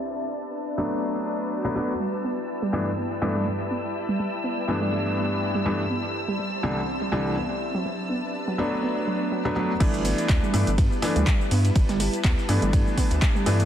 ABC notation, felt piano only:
X:1
M:4/4
L:1/16
Q:"Swing 16ths" 1/4=123
K:G
V:1 name="Felt piano"
z6 [F,A,B,D]6- [F,A,B,D] [F,A,B,D] [F,A,B,D] z | z6 [G,,E,A,B,D] z3 [G,,E,A,B,D]2 z4 | z6 [G,,E,A,B,D]8 [G,,E,A,B,D] z | z6 [C,,E,G,A,D] z3 [C,,E,G,A,D]2 z4 |
z6 [F,A,B,D]6- [F,A,B,D] [F,A,B,D] [F,A,B,D] z | [E,A,B,D]6 [E,A,B,D] z3 [E,A,B,D]2 z4 | z6 [E,A,B,D]8 [E,A,B,D] z |]